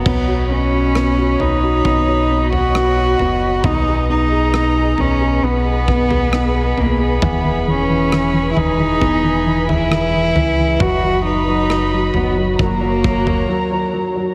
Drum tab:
CC |x---------------|----------------|----------------|----------------|
SD |----r-------r---|----r-------r---|----r-------r---|----r-----------|
FT |o-----o----o--o-|o-----o----o--o-|o-----o----o--o-|o-----o----o----|
BD |o-------o-------|o---------o-----|o-------o-------|o-------o-o-----|